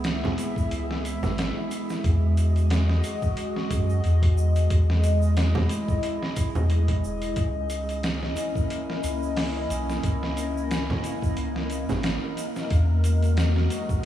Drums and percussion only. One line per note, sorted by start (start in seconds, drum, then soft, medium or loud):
0.04 snare loud
0.04 closed hi-hat medium
0.04 shaker soft
0.24 snare medium
0.24 low conga medium
0.38 closed hi-hat medium
0.38 shaker medium
0.56 kick loud
0.56 shaker soft
0.71 closed hi-hat medium
0.71 shaker soft
0.91 snare medium
1.05 closed hi-hat medium
1.05 shaker medium
1.23 snare soft
1.23 low conga medium
1.23 shaker soft
1.38 snare loud
1.38 closed hi-hat medium
1.38 shaker soft
1.71 closed hi-hat medium
1.71 shaker medium
1.90 snare soft
1.90 shaker medium
2.04 kick loud
2.04 closed hi-hat medium
2.04 shaker soft
2.37 closed hi-hat medium
2.37 shaker medium
2.56 closed hi-hat soft
2.56 shaker soft
2.70 snare loud
2.70 closed hi-hat medium
2.70 shaker soft
2.89 snare medium
3.04 closed hi-hat medium
3.04 shaker medium
3.22 kick loud
3.22 shaker soft
3.37 closed hi-hat medium
3.37 shaker soft
3.56 snare soft
3.71 kick loud
3.71 closed hi-hat medium
3.71 shaker medium
3.90 shaker soft
4.04 closed hi-hat medium
4.04 shaker soft
4.23 kick loud
4.23 closed hi-hat medium
4.38 shaker medium
4.56 closed hi-hat medium
4.56 shaker medium
4.70 kick loud
4.70 closed hi-hat medium
4.70 shaker soft
4.90 snare medium
5.04 closed hi-hat medium
5.04 shaker medium
5.22 shaker medium
5.36 snare loud
5.36 closed hi-hat medium
5.36 shaker soft
5.55 snare medium
5.55 low conga medium
5.69 closed hi-hat medium
5.69 shaker loud
5.88 kick loud
5.88 shaker soft
6.03 closed hi-hat medium
6.03 shaker soft
6.23 snare medium
6.36 kick loud
6.36 closed hi-hat medium
6.36 shaker medium
6.55 low conga medium
6.55 shaker soft
6.70 closed hi-hat medium
6.70 shaker soft
6.88 kick medium
6.88 closed hi-hat medium
7.04 shaker medium
7.22 closed hi-hat medium
7.22 shaker medium
7.36 kick loud
7.36 closed hi-hat medium
7.36 shaker soft
7.70 closed hi-hat medium
7.70 shaker medium
7.89 closed hi-hat soft
7.89 shaker medium
8.03 snare loud
8.03 closed hi-hat medium
8.03 shaker soft
8.23 snare medium
8.36 closed hi-hat medium
8.36 shaker medium
8.55 kick loud
8.55 shaker soft
8.70 closed hi-hat medium
8.70 shaker soft
8.90 snare soft
9.04 closed hi-hat medium
9.04 shaker loud
9.23 shaker medium
9.37 snare loud
9.37 open hi-hat medium
9.37 shaker soft
9.70 closed hi-hat medium
9.70 shaker loud
9.90 snare medium
9.90 shaker medium
10.03 kick loud
10.03 closed hi-hat medium
10.03 shaker soft
10.23 snare medium
10.37 closed hi-hat medium
10.37 shaker loud
10.57 shaker medium
10.71 snare loud
10.71 closed hi-hat medium
10.71 shaker soft
10.90 snare medium
10.90 low conga medium
11.04 closed hi-hat medium
11.04 shaker medium
11.22 kick loud
11.22 shaker soft
11.37 closed hi-hat medium
11.37 shaker soft
11.56 snare medium
11.70 closed hi-hat medium
11.70 shaker medium
11.89 snare soft
11.89 low conga medium
11.89 shaker medium
12.03 snare loud
12.03 closed hi-hat medium
12.03 shaker soft
12.37 closed hi-hat medium
12.37 shaker loud
12.56 snare soft
12.56 shaker medium
12.70 kick loud
12.70 closed hi-hat medium
12.70 shaker soft
13.04 closed hi-hat medium
13.04 shaker medium
13.22 closed hi-hat soft
13.22 shaker medium
13.37 snare loud
13.37 closed hi-hat medium
13.37 shaker soft
13.56 snare medium
13.70 closed hi-hat medium
13.70 shaker medium
13.89 kick loud
13.89 shaker medium